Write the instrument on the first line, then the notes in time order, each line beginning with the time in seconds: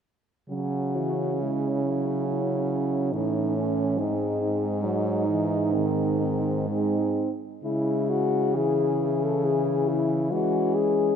french horn
0.49 C#3 F#3 C#4 F#4
0.96 E3
1.41 G#3 E4
1.84 F#3
2.28 E4
3.12 A2 E3 C#4 D#4
3.57 C#4
3.98 G#2 G#3 C4 D#4
4.41 D#4
4.84 F#3 D#4
5.28 E3
5.73 D#3 C4
6.21 C4
6.67 G#3 C4 D#4
7.64 C#3 G#3 E4
8.09 F#4
8.55 E3 E4 G#4
9.24 A4
9.45 E4 G#4
9.89 E4
10.32 E3 G#3 C#4 F#4
10.75 G#4